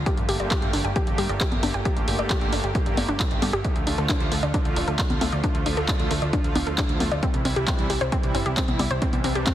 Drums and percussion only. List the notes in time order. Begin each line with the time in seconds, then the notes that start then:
0.06 kick, closed hi-hat
0.17 closed hi-hat
0.29 open hi-hat
0.40 closed hi-hat
0.51 kick, clap, closed hi-hat
0.62 closed hi-hat
0.73 open hi-hat
0.85 closed hi-hat
0.96 kick, closed hi-hat
1.07 closed hi-hat
1.18 open hi-hat
1.29 closed hi-hat
1.41 kick, clap, closed hi-hat
1.52 closed hi-hat, high conga
1.63 open hi-hat, high conga
1.74 closed hi-hat
1.85 kick, closed hi-hat
1.97 closed hi-hat
2.08 open hi-hat
2.19 closed hi-hat
2.30 kick, clap, closed hi-hat
2.41 closed hi-hat
2.53 open hi-hat
2.64 closed hi-hat
2.75 kick, closed hi-hat
2.86 closed hi-hat
2.97 open hi-hat, high conga
3.09 closed hi-hat
3.20 kick, clap, closed hi-hat
3.31 closed hi-hat
3.42 open hi-hat, high conga
3.64 kick, closed hi-hat
3.76 closed hi-hat
3.87 open hi-hat
3.98 closed hi-hat
4.09 kick, clap, closed hi-hat
4.20 closed hi-hat
4.32 open hi-hat
4.43 closed hi-hat
4.54 kick, closed hi-hat
4.65 closed hi-hat
4.76 open hi-hat
4.88 closed hi-hat
4.99 kick, clap, closed hi-hat
5.10 closed hi-hat, high conga
5.21 open hi-hat, high conga
5.32 closed hi-hat
5.44 kick, closed hi-hat
5.55 closed hi-hat
5.66 open hi-hat
5.77 closed hi-hat
5.88 kick, clap, closed hi-hat
6.00 closed hi-hat
6.11 open hi-hat
6.22 closed hi-hat
6.33 kick, closed hi-hat
6.44 closed hi-hat
6.55 open hi-hat, high conga
6.67 closed hi-hat
6.78 kick, clap, closed hi-hat
6.89 closed hi-hat
7.00 open hi-hat, high conga
7.12 closed hi-hat
7.23 kick, closed hi-hat
7.34 closed hi-hat
7.45 open hi-hat
7.56 closed hi-hat
7.67 kick, clap, closed hi-hat
7.79 closed hi-hat
7.90 open hi-hat
8.01 closed hi-hat
8.12 kick, closed hi-hat
8.23 closed hi-hat
8.35 open hi-hat
8.46 closed hi-hat
8.57 kick, clap, closed hi-hat
8.68 closed hi-hat, high conga
8.79 open hi-hat, high conga
8.91 closed hi-hat
9.02 kick, closed hi-hat
9.13 closed hi-hat, high conga
9.24 open hi-hat
9.35 closed hi-hat
9.47 kick, clap, closed hi-hat